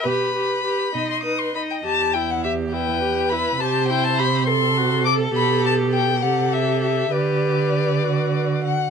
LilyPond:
<<
  \new Staff \with { instrumentName = "Violin" } { \time 6/8 \key b \phrygian \tempo 4. = 67 b''4.~ b''16 c'''16 dis'''16 c'''16 b''16 g''16 | \key g \major a''8 g''16 fis''16 e''8 g''4 b''8 | a''8 g''16 a''16 b''8 c'''4 d'''8 | b''8 a''8 g''8 fis''8 e''8 e''8 |
d''2~ d''8 fis''8 | }
  \new Staff \with { instrumentName = "Violin" } { \time 6/8 \key b \phrygian b'4. dis''8 b'8 dis''8 | \key g \major r4. b'4. | c''4. a'4.~ | a'4. a'4. |
b'2~ b'16 r8. | }
  \new Staff \with { instrumentName = "Viola" } { \time 6/8 \key b \phrygian g'8 g'8 g'8 dis'8 dis'8 dis'8 | \key g \major g'8 e'8 g'8 e'8 g'8 e'8 | g'8 e'8 g'8 a'8 fis'8 a'8 | g'4. g'4. |
g'4. fis'4 r8 | }
  \new Staff \with { instrumentName = "Cello" } { \clef bass \time 6/8 \key b \phrygian b,4. b,4. | \key g \major e,2. | c2. | b,4. c4. |
d2~ d8 r8 | }
>>